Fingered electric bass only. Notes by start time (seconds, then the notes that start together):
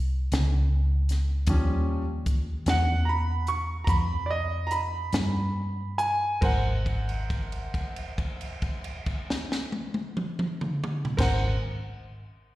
Already playing: C2
0.32 C#2
1.47 D#2
2.66 E2
3.87 F2
5.13 G2
6.42 G#1
11.19 G#1